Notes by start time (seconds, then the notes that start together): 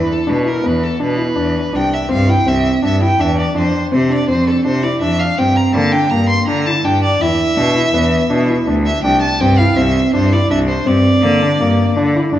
Already playing: E4 B4
0.12 A4
0.27 B2 D4 B4
0.45 E4 A#4
0.64 E2 B3 B4
0.84 A4
1.00 B2 D4 B4
1.17 E4
1.36 E2 D4
1.73 C2 D4 G5
1.94 E5
2.09 G2 C4 F5
2.27 E4 G5
2.46 C2 C4 E5
2.83 G2 D4 E5
3.01 E4 G5
3.19 E2 D4 E5
3.39 D5
3.55 F2 D4 C5
3.92 C3 C4 C5
4.10 D4 D5
4.28 F2 C4 C5
4.47 A4
4.65 C3 D4 C5
4.82 E4 D5
5.01 F2 D4 E5
5.20 F5
5.38 G2 C4 G5
5.56 A#5
5.73 D3 A#3 A5
5.92 D4 G5
6.10 G2 A#3 A#5
6.29 C6
6.47 D3 D4 A#5
6.66 E4 A5
6.84 G2 D4 G5
7.03 D5
7.20 E2 E4 E5
7.57 B2 D4
7.76 E4
7.94 E2 B3
8.30 B2 D4
8.48 E4
8.67 D2 D4
8.86 E5
9.03 C2 D4 G5
9.21 A5
9.39 G2 C4 G5
9.58 E4 F5
9.76 C2 C4 E5
10.13 G2 D4 C5
10.32 E4 D5
10.49 C2 D4 E5
10.69 C5
10.86 G2 C4 D5
11.22 D3 A#3
11.42 D4
11.59 G2 A#3
11.95 D3 D4
12.15 E4
12.32 G2 D4